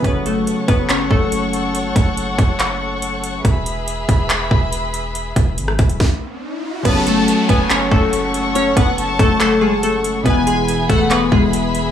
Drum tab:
CC |----------------|----------------|----------------|----------------|
HH |x-x-x-x-x---x-x-|x-x-x-x-x---x-x-|x-x-x-x-x---x-x-|x-x-x-xx--------|
CP |--------x-------|--------x-------|--------x-------|----------------|
SD |----------------|----------------|----------------|-----r--o-------|
BD |o-----o---o-----|--o---o---------|o-----o---o-----|--o---o-o-------|

CC |x---------------|----------------|----------------|
HH |x-x-x-x-x---x-x-|x-x-x-x-x---x-x-|x-x-x-x-x---x-x-|
CP |--------x-------|--------x-------|--------x-------|
SD |----------------|----------------|----------------|
BD |o-----o---o-----|--o---o---------|o-----o---o-----|